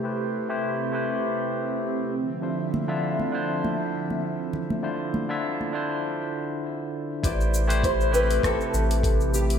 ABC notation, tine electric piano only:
X:1
M:4/4
L:1/16
Q:"Swing 16ths" 1/4=100
K:Am
V:1 name="Tine electric piano"
[A,EGBc]3 [A,EGBc]3 [A,EGBc]8 z2 | [D,DEFc]3 [D,DEFe]3 [D,DEFc]8- [D,DEFc]2 | [D,DEFc]3 [D,DEFe]3 [D,DEFc]8- [D,DEFc]2 | [A,EGBc]3 [A,EGBc]3 [A,CEGB]8- [A,CEGB]2 |]